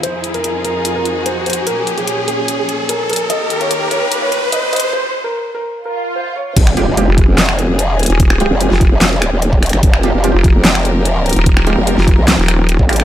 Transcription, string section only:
0.03 1.65 F2 medium
0.03 3.27 F3 medium
0.03 1.65 D#4 medium
0.03 3.27 G#4 medium
1.67 3.28 A#2 medium
1.67 3.28 C#4 medium
3.30 4.92 D#2 medium
3.30 4.92 D#3 medium
3.30 4.92 A#3 medium
3.30 4.92 G4 medium
6.56 13.04 F3 medium
6.56 13.04 C4 medium
6.56 13.04 G4 medium
6.56 9.82 G#4 medium
9.83 13.04 A#4 medium

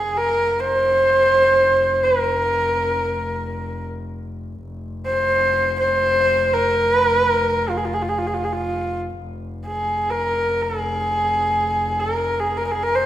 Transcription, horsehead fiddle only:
0.00 0.19 G#4 medium
0.17 0.61 A#4 medium
0.60 2.05 C5 medium
2.03 3.85 A#4 medium
5.06 5.75 C5 medium
5.80 6.54 C5 medium
6.53 7.71 A#4 medium
7.69 7.78 F4 medium
7.77 7.86 G#4 soft
7.85 7.95 F4 medium
7.94 8.03 G#4 medium
8.02 8.10 F4 soft
8.08 8.19 G#4 soft
8.18 8.28 F4 medium
8.27 8.35 G#4 medium
8.34 8.45 F4 medium
8.44 8.53 G#4 soft
8.52 8.99 F4 medium
9.66 10.11 G#4 medium
10.10 10.63 A#4 medium
10.62 12.01 G#4 medium
11.99 12.41 A#4 medium
12.39 12.58 G#4 medium
12.57 12.66 A#4 medium
12.66 12.72 A#4 medium
12.71 12.84 G#4 medium
12.83 12.96 A#4 medium
12.95 13.06 C5 medium

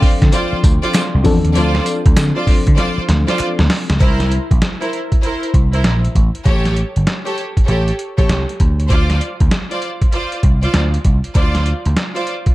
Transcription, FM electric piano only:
0.00 1.20 F3 medium
0.00 1.21 C4 medium
0.00 1.21 D4 medium
0.00 1.22 A4 medium
0.00 4.03 G5 medium
1.24 3.65 F3 medium
1.24 3.65 C4 medium
1.24 3.66 D4 medium
1.24 3.66 A4 medium

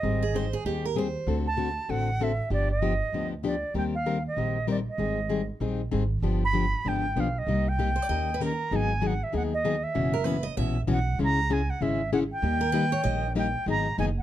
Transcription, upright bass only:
0.03 0.53 G#1 medium
0.65 1.15 D#2 medium
1.27 1.77 D2 medium
1.89 2.39 A1 medium
2.50 3.00 G1 medium
3.12 3.62 D2 medium
3.74 4.24 D#2 medium
4.36 4.86 A#1 medium
4.98 5.48 G#1 medium
5.60 5.87 A#1 medium
5.93 6.19 G#1 medium
6.22 6.72 G1 medium
6.85 7.11 G#1 medium
7.16 7.43 B1 medium
7.47 7.97 C2 medium
8.09 8.59 D#2 medium
8.71 9.21 G#1 medium
9.34 9.83 D#2 medium
9.96 10.45 F#1 medium
10.57 10.84 A#1 medium
10.88 11.14 B1 medium
11.19 11.69 C#2 medium
11.81 12.30 G#1 medium
12.42 12.92 D#2 medium
13.04 13.54 A#1 medium
13.66 13.91 G#1 medium
13.98 14.23 F#1 medium

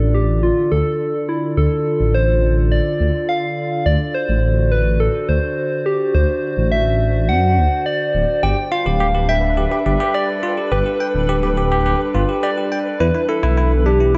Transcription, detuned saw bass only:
0.00 0.51 A1 medium
0.72 0.82 D2 loud
1.57 1.68 D2 loud
2.00 2.80 A1 medium
3.00 3.11 D2 loud
3.86 3.96 D2 medium
4.29 5.09 A1 medium
5.29 5.39 D2 medium
6.14 6.25 D2 loud
6.57 7.30 A1 medium
7.29 7.59 F#2 medium
7.57 7.68 D2 medium
8.14 8.25 D1 medium
8.43 8.54 G1 loud
8.86 9.66 D1 medium
9.86 9.96 G1 medium
10.72 10.82 G1 loud
11.15 11.94 D1 medium
12.14 12.25 G1 loud
13.00 13.11 E2 loud
13.43 14.18 B1 medium

